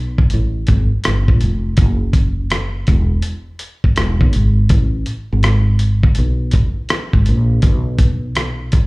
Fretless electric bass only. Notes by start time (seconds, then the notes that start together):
Already playing: B1
0.34 A1
0.69 G#1
1.07 G1
1.29 A#1
1.43 F1
1.79 F#1
2.89 E1
3.99 E1
4.22 B1
4.36 G#1
4.71 A1
5.32 G#1
6.18 B1
6.55 A1
7.15 G#1
7.29 A#1
7.64 B1
8.74 A1